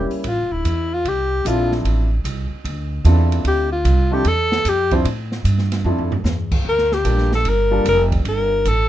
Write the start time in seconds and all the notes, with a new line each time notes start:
Already playing: G3 A#3 C#4 E4 G4
0.11 muted upright bass stroke, open hi-hat
0.24 A1 F4, kick, ride
0.38 F1
0.51 D1 E4
0.65 E2, kick, hi-hat pedal, ride
0.94 F4
1.05 C2 G4, kick, ride
1.45 A#1 F3 C4 D4 E4 F4 A4, kick, hi-hat pedal, ride
1.72 snare
1.85 A1, kick, ride
2.24 C2, kick, hi-hat pedal, ride
2.52 muted upright bass stroke
2.64 D2, kick, ride
3.04 E2 C4 D4 E4 F4 A4, kick, hi-hat pedal, ride
3.32 ride
3.45 D2 G4, kick, ride
3.72 F4
3.85 C2, kick, hi-hat pedal, ride
4.11 F3 C4 D4 E4 G4 A4
4.25 E2 A4, kick, ride
4.52 snare
4.65 F2 G4, kick, hi-hat pedal, ride
4.91 F3 C4 D4 E4 C5, kick, ride
5.05 A2, kick, ride
5.32 snare
5.44 G2, kick, hi-hat pedal, ride
5.59 snare
5.72 snare, ride
5.85 F2 F3 C4 D4 E4 A4, floor tom
5.99 floor tom
6.12 floor tom
6.24 E2, snare, hi-hat pedal
6.51 kick, crash
6.65 D2, kick
6.69 A#4
6.78 snare
6.92 G4, snare
7.04 A#1 G3 A#3 D4 F4 A4, kick, hi-hat pedal, ride
7.18 snare
7.32 A4, snare
7.45 G1, kick, ride
7.49 A#4
7.71 G3 A#3 D4 F4 A4
7.85 F1 A#4, kick, hi-hat pedal, ride
8.12 kick, ride
8.25 G1 A#4, kick, ride
8.65 A1 A4, kick, hi-hat pedal, ride